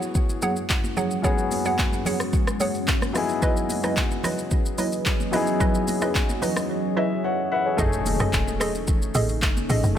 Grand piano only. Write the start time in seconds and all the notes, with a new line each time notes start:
Already playing: F#3 B3 C#4 F#4 G#4
1.22 F#3 B3 C#4 F#4
1.27 G#4
3.13 F#3 B3 D#4 E4
3.17 G#4
5.31 F#3 B3 D#4 E4
5.36 G#4
6.97 E5
7.24 C#5 F#5
7.52 B4 E5 F#5
7.66 G#4 C#5
7.77 A3 C#4 D#4
7.81 G#4
9.95 A3